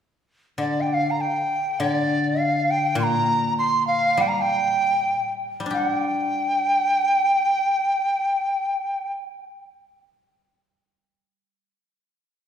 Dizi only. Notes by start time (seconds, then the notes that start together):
0.59 D5
0.81 G5
0.90 F5 G5
1.10 A#5
1.20 G5
1.80 D5
2.40 F5
2.70 G5
2.99 A#5 C6
3.58 C6
3.87 F5
4.21 G5
4.27 A#5
4.38 G5 A#5
5.73 F#5
5.91 G5